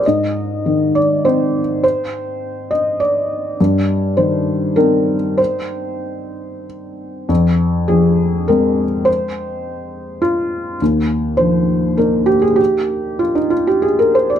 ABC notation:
X:1
M:3/4
L:1/16
Q:1/4=101
K:Fdor
V:1 name="Felt piano"
e6 d2 c4 | c6 e2 d4 | z4 c4 B4 | c8 z4 |
z4 A4 B4 | c8 F4 | z4 c4 B2 G A | G4 F E F G A B c d |]
V:2 name="Felt piano" clef=bass
A,,4 E,4 [CE]4- | [CE]12 | G,,4 E,4 [CE]4- | [CE]12 |
F,,4 F,4 [A,C]4- | [A,C]12 | E,,4 F,4 [B,E]4- | [B,E]12 |]